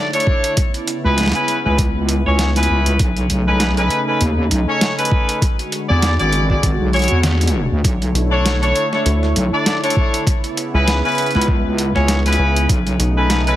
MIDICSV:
0, 0, Header, 1, 6, 480
1, 0, Start_track
1, 0, Tempo, 606061
1, 451, Time_signature, 4, 2, 24, 8
1, 10740, End_track
2, 0, Start_track
2, 0, Title_t, "Horn section"
2, 0, Program_c, 0, 61
2, 106, Note_on_c, 0, 69, 89
2, 106, Note_on_c, 0, 73, 108
2, 107, Note_on_c, 0, 62, 96
2, 107, Note_on_c, 0, 64, 90
2, 439, Note_off_c, 0, 62, 0
2, 439, Note_off_c, 0, 64, 0
2, 439, Note_off_c, 0, 69, 0
2, 439, Note_off_c, 0, 73, 0
2, 827, Note_on_c, 0, 61, 92
2, 828, Note_on_c, 0, 64, 85
2, 828, Note_on_c, 0, 68, 82
2, 828, Note_on_c, 0, 71, 102
2, 1017, Note_off_c, 0, 61, 0
2, 1018, Note_off_c, 0, 64, 0
2, 1018, Note_off_c, 0, 68, 0
2, 1018, Note_off_c, 0, 71, 0
2, 1066, Note_on_c, 0, 64, 90
2, 1066, Note_on_c, 0, 71, 111
2, 1067, Note_on_c, 0, 61, 98
2, 1067, Note_on_c, 0, 68, 90
2, 1257, Note_off_c, 0, 61, 0
2, 1257, Note_off_c, 0, 64, 0
2, 1257, Note_off_c, 0, 68, 0
2, 1257, Note_off_c, 0, 71, 0
2, 1308, Note_on_c, 0, 61, 86
2, 1309, Note_on_c, 0, 64, 78
2, 1309, Note_on_c, 0, 68, 79
2, 1309, Note_on_c, 0, 71, 97
2, 1415, Note_off_c, 0, 61, 0
2, 1415, Note_off_c, 0, 64, 0
2, 1415, Note_off_c, 0, 68, 0
2, 1415, Note_off_c, 0, 71, 0
2, 1789, Note_on_c, 0, 61, 93
2, 1789, Note_on_c, 0, 64, 82
2, 1789, Note_on_c, 0, 68, 81
2, 1789, Note_on_c, 0, 73, 101
2, 1978, Note_off_c, 0, 61, 0
2, 1978, Note_off_c, 0, 64, 0
2, 1978, Note_off_c, 0, 68, 0
2, 1978, Note_off_c, 0, 73, 0
2, 2028, Note_on_c, 0, 61, 96
2, 2029, Note_on_c, 0, 64, 90
2, 2029, Note_on_c, 0, 68, 90
2, 2029, Note_on_c, 0, 71, 107
2, 2360, Note_off_c, 0, 61, 0
2, 2360, Note_off_c, 0, 64, 0
2, 2360, Note_off_c, 0, 68, 0
2, 2360, Note_off_c, 0, 71, 0
2, 2748, Note_on_c, 0, 61, 91
2, 2748, Note_on_c, 0, 63, 85
2, 2749, Note_on_c, 0, 69, 84
2, 2749, Note_on_c, 0, 71, 104
2, 2938, Note_off_c, 0, 61, 0
2, 2938, Note_off_c, 0, 63, 0
2, 2938, Note_off_c, 0, 69, 0
2, 2938, Note_off_c, 0, 71, 0
2, 2988, Note_on_c, 0, 63, 92
2, 2988, Note_on_c, 0, 71, 109
2, 2989, Note_on_c, 0, 61, 100
2, 2989, Note_on_c, 0, 69, 91
2, 3178, Note_off_c, 0, 61, 0
2, 3178, Note_off_c, 0, 63, 0
2, 3178, Note_off_c, 0, 69, 0
2, 3178, Note_off_c, 0, 71, 0
2, 3227, Note_on_c, 0, 63, 79
2, 3227, Note_on_c, 0, 69, 78
2, 3227, Note_on_c, 0, 71, 96
2, 3228, Note_on_c, 0, 61, 85
2, 3334, Note_off_c, 0, 61, 0
2, 3334, Note_off_c, 0, 63, 0
2, 3334, Note_off_c, 0, 69, 0
2, 3334, Note_off_c, 0, 71, 0
2, 3705, Note_on_c, 0, 61, 89
2, 3705, Note_on_c, 0, 63, 83
2, 3707, Note_on_c, 0, 69, 80
2, 3707, Note_on_c, 0, 73, 99
2, 3896, Note_off_c, 0, 61, 0
2, 3897, Note_off_c, 0, 63, 0
2, 3897, Note_off_c, 0, 69, 0
2, 3897, Note_off_c, 0, 73, 0
2, 3946, Note_on_c, 0, 63, 92
2, 3946, Note_on_c, 0, 69, 89
2, 3946, Note_on_c, 0, 71, 108
2, 3947, Note_on_c, 0, 61, 98
2, 4278, Note_off_c, 0, 63, 0
2, 4278, Note_off_c, 0, 69, 0
2, 4278, Note_off_c, 0, 71, 0
2, 4279, Note_off_c, 0, 61, 0
2, 4665, Note_on_c, 0, 66, 83
2, 4665, Note_on_c, 0, 68, 85
2, 4665, Note_on_c, 0, 74, 104
2, 4666, Note_on_c, 0, 64, 92
2, 4856, Note_off_c, 0, 66, 0
2, 4856, Note_off_c, 0, 68, 0
2, 4856, Note_off_c, 0, 74, 0
2, 4857, Note_off_c, 0, 64, 0
2, 4905, Note_on_c, 0, 66, 91
2, 4905, Note_on_c, 0, 68, 88
2, 4906, Note_on_c, 0, 64, 98
2, 4907, Note_on_c, 0, 74, 109
2, 5096, Note_off_c, 0, 66, 0
2, 5097, Note_off_c, 0, 64, 0
2, 5097, Note_off_c, 0, 68, 0
2, 5097, Note_off_c, 0, 74, 0
2, 5145, Note_on_c, 0, 64, 86
2, 5145, Note_on_c, 0, 66, 77
2, 5145, Note_on_c, 0, 68, 80
2, 5145, Note_on_c, 0, 74, 94
2, 5253, Note_off_c, 0, 64, 0
2, 5253, Note_off_c, 0, 66, 0
2, 5253, Note_off_c, 0, 68, 0
2, 5253, Note_off_c, 0, 74, 0
2, 5489, Note_on_c, 0, 66, 89
2, 5490, Note_on_c, 0, 64, 96
2, 5490, Note_on_c, 0, 68, 90
2, 5490, Note_on_c, 0, 73, 107
2, 5692, Note_off_c, 0, 64, 0
2, 5692, Note_off_c, 0, 66, 0
2, 5692, Note_off_c, 0, 73, 0
2, 5693, Note_off_c, 0, 68, 0
2, 6586, Note_on_c, 0, 62, 95
2, 6586, Note_on_c, 0, 69, 86
2, 6586, Note_on_c, 0, 73, 103
2, 6587, Note_on_c, 0, 64, 85
2, 6777, Note_off_c, 0, 62, 0
2, 6777, Note_off_c, 0, 64, 0
2, 6777, Note_off_c, 0, 69, 0
2, 6777, Note_off_c, 0, 73, 0
2, 6825, Note_on_c, 0, 64, 90
2, 6826, Note_on_c, 0, 62, 100
2, 6826, Note_on_c, 0, 69, 89
2, 6826, Note_on_c, 0, 73, 109
2, 7016, Note_off_c, 0, 64, 0
2, 7017, Note_off_c, 0, 62, 0
2, 7017, Note_off_c, 0, 69, 0
2, 7017, Note_off_c, 0, 73, 0
2, 7067, Note_on_c, 0, 62, 88
2, 7067, Note_on_c, 0, 64, 80
2, 7067, Note_on_c, 0, 73, 94
2, 7068, Note_on_c, 0, 69, 77
2, 7174, Note_off_c, 0, 62, 0
2, 7174, Note_off_c, 0, 64, 0
2, 7174, Note_off_c, 0, 69, 0
2, 7174, Note_off_c, 0, 73, 0
2, 7546, Note_on_c, 0, 62, 90
2, 7546, Note_on_c, 0, 69, 85
2, 7547, Note_on_c, 0, 64, 84
2, 7547, Note_on_c, 0, 74, 98
2, 7737, Note_off_c, 0, 62, 0
2, 7737, Note_off_c, 0, 64, 0
2, 7737, Note_off_c, 0, 69, 0
2, 7737, Note_off_c, 0, 74, 0
2, 7786, Note_on_c, 0, 62, 98
2, 7786, Note_on_c, 0, 64, 90
2, 7786, Note_on_c, 0, 73, 107
2, 7787, Note_on_c, 0, 69, 89
2, 8118, Note_off_c, 0, 62, 0
2, 8118, Note_off_c, 0, 64, 0
2, 8118, Note_off_c, 0, 73, 0
2, 8119, Note_off_c, 0, 69, 0
2, 8507, Note_on_c, 0, 61, 93
2, 8507, Note_on_c, 0, 68, 83
2, 8507, Note_on_c, 0, 71, 104
2, 8508, Note_on_c, 0, 64, 83
2, 8697, Note_off_c, 0, 61, 0
2, 8697, Note_off_c, 0, 68, 0
2, 8697, Note_off_c, 0, 71, 0
2, 8698, Note_off_c, 0, 64, 0
2, 8749, Note_on_c, 0, 64, 92
2, 8749, Note_on_c, 0, 68, 91
2, 8750, Note_on_c, 0, 61, 98
2, 8750, Note_on_c, 0, 71, 108
2, 8938, Note_off_c, 0, 64, 0
2, 8938, Note_off_c, 0, 68, 0
2, 8939, Note_off_c, 0, 61, 0
2, 8939, Note_off_c, 0, 71, 0
2, 8986, Note_on_c, 0, 64, 78
2, 8987, Note_on_c, 0, 71, 94
2, 8988, Note_on_c, 0, 61, 86
2, 8988, Note_on_c, 0, 68, 80
2, 9094, Note_off_c, 0, 64, 0
2, 9094, Note_off_c, 0, 71, 0
2, 9095, Note_off_c, 0, 61, 0
2, 9095, Note_off_c, 0, 68, 0
2, 9466, Note_on_c, 0, 73, 100
2, 9467, Note_on_c, 0, 61, 92
2, 9467, Note_on_c, 0, 64, 84
2, 9468, Note_on_c, 0, 68, 84
2, 9657, Note_off_c, 0, 61, 0
2, 9657, Note_off_c, 0, 64, 0
2, 9657, Note_off_c, 0, 73, 0
2, 9658, Note_off_c, 0, 68, 0
2, 9711, Note_on_c, 0, 61, 102
2, 9711, Note_on_c, 0, 64, 89
2, 9711, Note_on_c, 0, 71, 110
2, 9713, Note_on_c, 0, 68, 93
2, 10041, Note_off_c, 0, 61, 0
2, 10041, Note_off_c, 0, 64, 0
2, 10041, Note_off_c, 0, 71, 0
2, 10042, Note_off_c, 0, 68, 0
2, 10429, Note_on_c, 0, 61, 92
2, 10429, Note_on_c, 0, 71, 103
2, 10430, Note_on_c, 0, 63, 86
2, 10430, Note_on_c, 0, 69, 86
2, 10618, Note_off_c, 0, 61, 0
2, 10618, Note_off_c, 0, 71, 0
2, 10619, Note_off_c, 0, 63, 0
2, 10619, Note_off_c, 0, 69, 0
2, 10669, Note_on_c, 0, 63, 93
2, 10669, Note_on_c, 0, 69, 90
2, 10669, Note_on_c, 0, 71, 109
2, 10670, Note_on_c, 0, 61, 100
2, 10740, Note_off_c, 0, 61, 0
2, 10740, Note_off_c, 0, 63, 0
2, 10740, Note_off_c, 0, 69, 0
2, 10740, Note_off_c, 0, 71, 0
2, 10740, End_track
3, 0, Start_track
3, 0, Title_t, "Analog synth pad"
3, 0, Program_c, 1, 89
3, 0, Note_on_c, 1, 50, 77
3, 0, Note_on_c, 1, 57, 72
3, 0, Note_on_c, 1, 64, 84
3, 0, Note_on_c, 1, 73, 72
3, 433, Note_off_c, 1, 50, 0
3, 433, Note_off_c, 1, 73, 0
3, 435, Note_off_c, 1, 57, 0
3, 449, Note_on_c, 1, 49, 78
3, 452, Note_on_c, 1, 59, 71
3, 2341, Note_off_c, 1, 64, 0
3, 2351, Note_off_c, 1, 49, 0
3, 2352, Note_off_c, 1, 59, 0
3, 2372, Note_on_c, 1, 63, 85
3, 2373, Note_on_c, 1, 57, 71
3, 2374, Note_on_c, 1, 49, 79
3, 4273, Note_off_c, 1, 57, 0
3, 4273, Note_off_c, 1, 63, 0
3, 4274, Note_off_c, 1, 49, 0
3, 4291, Note_on_c, 1, 50, 78
3, 4292, Note_on_c, 1, 66, 85
3, 4293, Note_on_c, 1, 56, 69
3, 6193, Note_off_c, 1, 56, 0
3, 6193, Note_off_c, 1, 66, 0
3, 6213, Note_on_c, 1, 57, 71
3, 6214, Note_on_c, 1, 73, 73
3, 6215, Note_on_c, 1, 64, 88
3, 8100, Note_off_c, 1, 50, 0
3, 8113, Note_off_c, 1, 57, 0
3, 8114, Note_off_c, 1, 73, 0
3, 8134, Note_on_c, 1, 59, 72
3, 8136, Note_on_c, 1, 49, 79
3, 10022, Note_off_c, 1, 64, 0
3, 10034, Note_off_c, 1, 59, 0
3, 10053, Note_on_c, 1, 57, 73
3, 10053, Note_on_c, 1, 63, 87
3, 10740, Note_off_c, 1, 49, 0
3, 10740, Note_off_c, 1, 57, 0
3, 10740, Note_off_c, 1, 63, 0
3, 10740, End_track
4, 0, Start_track
4, 0, Title_t, "Analog synth bass"
4, 0, Program_c, 2, 38
4, 6449, Note_on_c, 2, 35, 96
4, 6914, Note_off_c, 2, 35, 0
4, 7173, Note_on_c, 2, 38, 94
4, 7395, Note_off_c, 2, 38, 0
4, 8507, Note_on_c, 2, 37, 97
4, 8726, Note_off_c, 2, 37, 0
4, 9812, Note_on_c, 2, 37, 99
4, 10035, Note_off_c, 2, 37, 0
4, 10292, Note_on_c, 2, 35, 95
4, 10740, Note_off_c, 2, 35, 0
4, 10740, End_track
5, 0, Start_track
5, 0, Title_t, "Wobble bass"
5, 0, Program_c, 3, 39
5, 825, Note_on_c, 3, 37, 97
5, 1045, Note_off_c, 3, 37, 0
5, 1309, Note_on_c, 3, 37, 94
5, 1767, Note_off_c, 3, 37, 0
5, 1787, Note_on_c, 3, 37, 98
5, 2114, Note_off_c, 3, 37, 0
5, 2132, Note_on_c, 3, 37, 101
5, 2355, Note_off_c, 3, 37, 0
5, 2374, Note_on_c, 3, 35, 96
5, 2596, Note_off_c, 3, 35, 0
5, 2609, Note_on_c, 3, 35, 93
5, 3074, Note_off_c, 3, 35, 0
5, 3331, Note_on_c, 3, 39, 96
5, 3554, Note_off_c, 3, 39, 0
5, 3569, Note_on_c, 3, 35, 99
5, 3685, Note_off_c, 3, 35, 0
5, 4668, Note_on_c, 3, 40, 99
5, 4886, Note_off_c, 3, 40, 0
5, 4909, Note_on_c, 3, 32, 95
5, 5236, Note_off_c, 3, 32, 0
5, 5252, Note_on_c, 3, 32, 96
5, 5366, Note_off_c, 3, 32, 0
5, 5387, Note_on_c, 3, 35, 96
5, 5606, Note_off_c, 3, 35, 0
5, 5626, Note_on_c, 3, 40, 95
5, 6085, Note_off_c, 3, 40, 0
5, 6108, Note_on_c, 3, 38, 93
5, 6195, Note_off_c, 3, 38, 0
5, 6212, Note_on_c, 3, 35, 97
5, 6435, Note_off_c, 3, 35, 0
5, 7412, Note_on_c, 3, 35, 97
5, 7526, Note_off_c, 3, 35, 0
5, 8989, Note_on_c, 3, 37, 94
5, 9446, Note_off_c, 3, 37, 0
5, 9468, Note_on_c, 3, 37, 95
5, 9795, Note_off_c, 3, 37, 0
5, 10054, Note_on_c, 3, 35, 97
5, 10276, Note_off_c, 3, 35, 0
5, 10740, End_track
6, 0, Start_track
6, 0, Title_t, "Drums"
6, 106, Note_on_c, 9, 42, 49
6, 159, Note_off_c, 9, 42, 0
6, 159, Note_on_c, 9, 42, 64
6, 213, Note_on_c, 9, 36, 104
6, 238, Note_off_c, 9, 42, 0
6, 292, Note_off_c, 9, 36, 0
6, 348, Note_on_c, 9, 42, 68
6, 427, Note_off_c, 9, 42, 0
6, 451, Note_on_c, 9, 42, 78
6, 452, Note_on_c, 9, 36, 119
6, 530, Note_off_c, 9, 42, 0
6, 532, Note_off_c, 9, 36, 0
6, 588, Note_on_c, 9, 42, 37
6, 667, Note_off_c, 9, 42, 0
6, 693, Note_on_c, 9, 42, 65
6, 772, Note_off_c, 9, 42, 0
6, 932, Note_on_c, 9, 38, 55
6, 932, Note_on_c, 9, 42, 83
6, 954, Note_off_c, 9, 38, 0
6, 954, Note_on_c, 9, 38, 65
6, 976, Note_off_c, 9, 38, 0
6, 976, Note_on_c, 9, 38, 77
6, 999, Note_off_c, 9, 38, 0
6, 999, Note_on_c, 9, 38, 82
6, 1011, Note_off_c, 9, 38, 0
6, 1011, Note_off_c, 9, 42, 0
6, 1011, Note_on_c, 9, 38, 94
6, 1043, Note_off_c, 9, 38, 0
6, 1043, Note_on_c, 9, 38, 107
6, 1070, Note_on_c, 9, 42, 38
6, 1122, Note_off_c, 9, 38, 0
6, 1149, Note_off_c, 9, 42, 0
6, 1173, Note_on_c, 9, 42, 69
6, 1252, Note_off_c, 9, 42, 0
6, 1412, Note_on_c, 9, 36, 109
6, 1414, Note_on_c, 9, 42, 82
6, 1492, Note_off_c, 9, 36, 0
6, 1493, Note_off_c, 9, 42, 0
6, 1652, Note_on_c, 9, 42, 69
6, 1731, Note_off_c, 9, 42, 0
6, 1891, Note_on_c, 9, 38, 121
6, 1891, Note_on_c, 9, 42, 82
6, 1970, Note_off_c, 9, 38, 0
6, 1970, Note_off_c, 9, 42, 0
6, 2028, Note_on_c, 9, 38, 37
6, 2028, Note_on_c, 9, 42, 49
6, 2081, Note_off_c, 9, 42, 0
6, 2081, Note_on_c, 9, 42, 66
6, 2107, Note_off_c, 9, 38, 0
6, 2160, Note_off_c, 9, 42, 0
6, 2266, Note_on_c, 9, 42, 68
6, 2345, Note_off_c, 9, 42, 0
6, 2371, Note_on_c, 9, 42, 81
6, 2372, Note_on_c, 9, 36, 121
6, 2450, Note_off_c, 9, 42, 0
6, 2452, Note_off_c, 9, 36, 0
6, 2507, Note_on_c, 9, 42, 37
6, 2586, Note_off_c, 9, 42, 0
6, 2612, Note_on_c, 9, 42, 66
6, 2691, Note_off_c, 9, 42, 0
6, 2851, Note_on_c, 9, 38, 126
6, 2851, Note_on_c, 9, 42, 81
6, 2930, Note_off_c, 9, 38, 0
6, 2930, Note_off_c, 9, 42, 0
6, 2988, Note_on_c, 9, 42, 37
6, 3067, Note_off_c, 9, 42, 0
6, 3092, Note_on_c, 9, 42, 68
6, 3172, Note_off_c, 9, 42, 0
6, 3332, Note_on_c, 9, 42, 80
6, 3411, Note_off_c, 9, 42, 0
6, 3573, Note_on_c, 9, 42, 66
6, 3652, Note_off_c, 9, 42, 0
6, 3812, Note_on_c, 9, 38, 127
6, 3812, Note_on_c, 9, 42, 79
6, 3891, Note_off_c, 9, 38, 0
6, 3891, Note_off_c, 9, 42, 0
6, 3949, Note_on_c, 9, 42, 48
6, 4000, Note_off_c, 9, 42, 0
6, 4000, Note_on_c, 9, 42, 61
6, 4051, Note_on_c, 9, 36, 114
6, 4079, Note_off_c, 9, 42, 0
6, 4130, Note_off_c, 9, 36, 0
6, 4188, Note_on_c, 9, 42, 66
6, 4267, Note_off_c, 9, 42, 0
6, 4291, Note_on_c, 9, 36, 122
6, 4294, Note_on_c, 9, 42, 76
6, 4370, Note_off_c, 9, 36, 0
6, 4373, Note_off_c, 9, 42, 0
6, 4429, Note_on_c, 9, 42, 36
6, 4509, Note_off_c, 9, 42, 0
6, 4532, Note_on_c, 9, 42, 63
6, 4611, Note_off_c, 9, 42, 0
6, 4771, Note_on_c, 9, 38, 121
6, 4771, Note_on_c, 9, 42, 79
6, 4851, Note_off_c, 9, 38, 0
6, 4851, Note_off_c, 9, 42, 0
6, 4906, Note_on_c, 9, 42, 35
6, 4985, Note_off_c, 9, 42, 0
6, 5009, Note_on_c, 9, 42, 66
6, 5089, Note_off_c, 9, 42, 0
6, 5147, Note_on_c, 9, 36, 63
6, 5226, Note_off_c, 9, 36, 0
6, 5252, Note_on_c, 9, 36, 104
6, 5252, Note_on_c, 9, 42, 78
6, 5331, Note_off_c, 9, 36, 0
6, 5331, Note_off_c, 9, 42, 0
6, 5491, Note_on_c, 9, 42, 29
6, 5513, Note_off_c, 9, 42, 0
6, 5513, Note_on_c, 9, 42, 35
6, 5537, Note_off_c, 9, 42, 0
6, 5537, Note_on_c, 9, 42, 40
6, 5560, Note_off_c, 9, 42, 0
6, 5560, Note_on_c, 9, 42, 44
6, 5573, Note_off_c, 9, 42, 0
6, 5573, Note_on_c, 9, 42, 49
6, 5606, Note_off_c, 9, 42, 0
6, 5606, Note_on_c, 9, 42, 56
6, 5686, Note_off_c, 9, 42, 0
6, 5730, Note_on_c, 9, 38, 124
6, 5730, Note_on_c, 9, 42, 77
6, 5809, Note_off_c, 9, 38, 0
6, 5809, Note_off_c, 9, 42, 0
6, 5869, Note_on_c, 9, 38, 35
6, 5869, Note_on_c, 9, 42, 46
6, 5887, Note_off_c, 9, 38, 0
6, 5887, Note_on_c, 9, 38, 28
6, 5892, Note_off_c, 9, 38, 0
6, 5892, Note_on_c, 9, 38, 23
6, 5920, Note_off_c, 9, 38, 0
6, 5920, Note_off_c, 9, 42, 0
6, 5920, Note_on_c, 9, 38, 19
6, 5920, Note_on_c, 9, 42, 62
6, 5940, Note_off_c, 9, 38, 0
6, 5940, Note_on_c, 9, 38, 16
6, 5958, Note_off_c, 9, 38, 0
6, 5958, Note_on_c, 9, 38, 13
6, 5999, Note_off_c, 9, 42, 0
6, 6037, Note_off_c, 9, 38, 0
6, 6212, Note_on_c, 9, 36, 111
6, 6214, Note_on_c, 9, 42, 74
6, 6291, Note_off_c, 9, 36, 0
6, 6293, Note_off_c, 9, 42, 0
6, 6351, Note_on_c, 9, 42, 34
6, 6430, Note_off_c, 9, 42, 0
6, 6457, Note_on_c, 9, 42, 62
6, 6536, Note_off_c, 9, 42, 0
6, 6697, Note_on_c, 9, 38, 117
6, 6697, Note_on_c, 9, 42, 74
6, 6776, Note_off_c, 9, 38, 0
6, 6776, Note_off_c, 9, 42, 0
6, 6833, Note_on_c, 9, 42, 35
6, 6912, Note_off_c, 9, 42, 0
6, 6934, Note_on_c, 9, 42, 64
6, 7013, Note_off_c, 9, 42, 0
6, 7070, Note_on_c, 9, 40, 50
6, 7149, Note_off_c, 9, 40, 0
6, 7174, Note_on_c, 9, 42, 75
6, 7253, Note_off_c, 9, 42, 0
6, 7310, Note_on_c, 9, 40, 36
6, 7389, Note_off_c, 9, 40, 0
6, 7414, Note_on_c, 9, 42, 65
6, 7493, Note_off_c, 9, 42, 0
6, 7653, Note_on_c, 9, 38, 119
6, 7653, Note_on_c, 9, 42, 79
6, 7732, Note_off_c, 9, 38, 0
6, 7732, Note_off_c, 9, 42, 0
6, 7790, Note_on_c, 9, 42, 44
6, 7843, Note_off_c, 9, 42, 0
6, 7843, Note_on_c, 9, 42, 58
6, 7892, Note_on_c, 9, 36, 104
6, 7923, Note_off_c, 9, 42, 0
6, 7971, Note_off_c, 9, 36, 0
6, 8030, Note_on_c, 9, 42, 62
6, 8110, Note_off_c, 9, 42, 0
6, 8132, Note_on_c, 9, 36, 112
6, 8135, Note_on_c, 9, 42, 74
6, 8211, Note_off_c, 9, 36, 0
6, 8214, Note_off_c, 9, 42, 0
6, 8268, Note_on_c, 9, 42, 35
6, 8347, Note_off_c, 9, 42, 0
6, 8374, Note_on_c, 9, 42, 61
6, 8454, Note_off_c, 9, 42, 0
6, 8614, Note_on_c, 9, 38, 118
6, 8614, Note_on_c, 9, 42, 76
6, 8693, Note_off_c, 9, 38, 0
6, 8693, Note_off_c, 9, 42, 0
6, 8753, Note_on_c, 9, 42, 16
6, 8779, Note_off_c, 9, 42, 0
6, 8779, Note_on_c, 9, 42, 18
6, 8805, Note_off_c, 9, 42, 0
6, 8805, Note_on_c, 9, 42, 20
6, 8830, Note_off_c, 9, 42, 0
6, 8830, Note_on_c, 9, 42, 21
6, 8855, Note_off_c, 9, 42, 0
6, 8855, Note_on_c, 9, 42, 62
6, 8889, Note_off_c, 9, 42, 0
6, 8889, Note_on_c, 9, 42, 26
6, 8921, Note_off_c, 9, 42, 0
6, 8921, Note_on_c, 9, 42, 29
6, 8954, Note_off_c, 9, 42, 0
6, 8954, Note_on_c, 9, 42, 32
6, 8987, Note_on_c, 9, 40, 54
6, 9033, Note_off_c, 9, 42, 0
6, 9040, Note_on_c, 9, 42, 75
6, 9067, Note_off_c, 9, 40, 0
6, 9092, Note_on_c, 9, 36, 99
6, 9119, Note_off_c, 9, 42, 0
6, 9171, Note_off_c, 9, 36, 0
6, 9333, Note_on_c, 9, 42, 63
6, 9413, Note_off_c, 9, 42, 0
6, 9469, Note_on_c, 9, 40, 53
6, 9548, Note_off_c, 9, 40, 0
6, 9570, Note_on_c, 9, 38, 115
6, 9570, Note_on_c, 9, 42, 78
6, 9650, Note_off_c, 9, 38, 0
6, 9650, Note_off_c, 9, 42, 0
6, 9708, Note_on_c, 9, 38, 35
6, 9708, Note_on_c, 9, 42, 46
6, 9761, Note_off_c, 9, 42, 0
6, 9761, Note_on_c, 9, 42, 61
6, 9788, Note_off_c, 9, 38, 0
6, 9841, Note_off_c, 9, 42, 0
6, 9951, Note_on_c, 9, 42, 63
6, 10030, Note_off_c, 9, 42, 0
6, 10053, Note_on_c, 9, 36, 110
6, 10054, Note_on_c, 9, 42, 75
6, 10132, Note_off_c, 9, 36, 0
6, 10133, Note_off_c, 9, 42, 0
6, 10190, Note_on_c, 9, 42, 35
6, 10269, Note_off_c, 9, 42, 0
6, 10293, Note_on_c, 9, 42, 64
6, 10372, Note_off_c, 9, 42, 0
6, 10533, Note_on_c, 9, 38, 112
6, 10533, Note_on_c, 9, 42, 77
6, 10612, Note_off_c, 9, 38, 0
6, 10612, Note_off_c, 9, 42, 0
6, 10669, Note_on_c, 9, 42, 36
6, 10740, Note_off_c, 9, 42, 0
6, 10740, End_track
0, 0, End_of_file